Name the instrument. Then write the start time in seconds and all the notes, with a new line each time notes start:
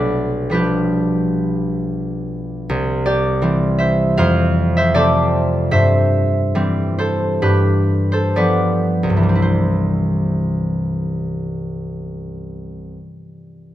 harp
Already playing: B1 D4 B4 D5
0.50 F3 G3 D4 B4
0.55 G4
2.69 C2
3.06 G4 D5
3.42 E3 G3 C4
3.78 C5 E5
4.17 F2 C5 F5
4.77 C5 E5
4.94 C3 A3 C4 A4 D5
5.71 G2 C5 E5
6.55 E3 G3 C4
6.99 A4 C5
7.42 G2 G4 B4
8.12 A4 C5
8.36 F3 G3 B3 B4 D5
9.03 C2
9.10 G2
9.17 E3
9.23 G3
9.29 C4
9.35 E4
9.42 C5